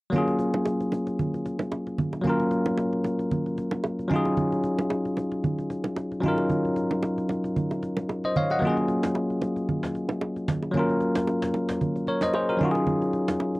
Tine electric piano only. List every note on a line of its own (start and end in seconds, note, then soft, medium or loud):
0.09 2.19 F#3 medium
0.09 2.20 A#3 medium
0.09 2.21 C#4 medium
0.15 2.22 F4 medium
0.15 2.23 G#4 medium
2.22 4.05 F#3 medium
2.22 4.06 A#3 medium
2.22 4.07 C#4 medium
2.28 4.08 F4 medium
2.28 4.10 A#4 medium
4.08 6.18 F#3 medium
4.08 6.19 C#4 medium
4.08 6.20 D#4 medium
4.14 6.21 F4 medium
4.14 6.22 G#4 medium
6.20 8.30 F#3 medium
6.20 8.31 C#4 medium
6.24 8.32 D#4 medium
6.24 8.33 F4 medium
6.24 8.34 A#4 medium
8.25 8.36 C5 medium
8.25 8.36 D#5 medium
8.37 8.50 C#5 medium
8.37 8.50 F5 medium
8.51 8.76 D#5 medium
8.51 8.76 F#5 medium
8.59 10.69 F#3 medium
8.59 10.70 A#3 medium
8.59 8.70 C4 medium
8.65 10.72 F4 medium
8.65 10.73 G#4 medium
8.69 10.74 C#4 medium
10.72 12.55 F#3 medium
10.72 12.56 A#3 medium
10.72 12.57 C#4 medium
10.78 12.06 F4 medium
10.78 12.07 A#4 medium
12.08 12.22 A#4 medium
12.08 12.22 C#5 medium
12.23 12.33 C5 medium
12.23 12.34 D#5 medium
12.35 12.49 G#4 medium
12.35 12.48 C5 medium
12.49 12.64 F#4 medium
12.49 12.74 A#4 medium
12.57 13.60 F#3 medium
12.57 13.60 C#4 medium
12.57 13.60 D#4 medium
12.63 13.60 F4 medium
12.63 12.70 F#4 medium
12.71 13.60 G#4 medium